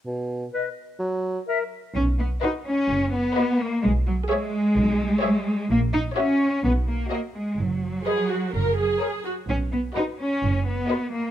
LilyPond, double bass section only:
\new Staff \with { instrumentName = "Double bass section" } { \clef bass \time 4/4 \key b \major \tempo 4 = 128 r1 | b,,4 r4 fis,,4 r4 | b,,4 r4 b,,4 r4 | ais,,4 r4 b,,4 r4 |
fis,,4 r4 fis,,4 r4 | b,,4 r4 fis,,4 r4 | }